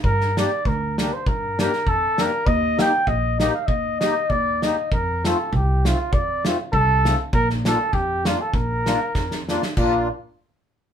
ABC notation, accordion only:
X:1
M:2/4
L:1/8
Q:"Swing" 1/4=99
K:Bb
V:1 name="Accordion"
z [B,DG] z [B,DG] | z [B,DG] z [B,DG] | z [B,EG] z [B,EG] | z [B,EG] z [B,EG] |
z [A,CF] z [A,CF] | z [A,CF] z [A,CF] | z [B,DF] z [B,DF] | z [B,DF] z [B,DF] |
[B,DF] z3 |]